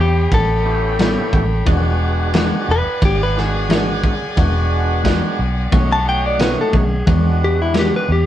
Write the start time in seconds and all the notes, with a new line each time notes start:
Already playing: C#5 G5 B5
0.00 E2 G4
0.32 A1 A4, kick, ride bell
0.65 B3 C#4 E4 G4
0.99 A2 G3 B3 C#4, snare, ride bell
1.33 A1, kick
1.66 E1 E3 G#3 B3 D4 F#4 D5 F#5 G#5, kick, ride bell
2.34 E3 G#3 D4 F#4, snare, ride bell
2.68 E1 B4
2.86 muted fingered electric bass stroke
3.02 G#1 G4, kick, ride bell
3.23 B4
3.36 G#3 B3 D4 F#4 G#4, snare
3.69 E3 G#3 D4 F#4, snare, ride bell
4.04 kick
4.36 E1 G#3 B3 D4 F#4, kick, ride bell
5.04 E3 G#3 D4 F#4, kick, snare, ride bell
5.39 B1
5.72 B1 B2 D#3 A3 C#4 D#4 F#4 C#5 D#5 F#5, kick, ride bell
5.93 A5
6.06 A3 C#4 D#4 F#4 G5
6.26 D5
6.39 B2 D#3 A3 C#4 B4, snare, ride bell
6.61 A4
6.72 B1 D#3 A3 C#4, kick
6.77 G#4
7.06 E2 E3 G#3 B3 D4 F#4, kick, ride bell
7.45 G4
7.62 E4
7.74 E3 G#3 D4 F#4, snare, ride bell
7.79 G4
7.96 B4
8.09 E2 G4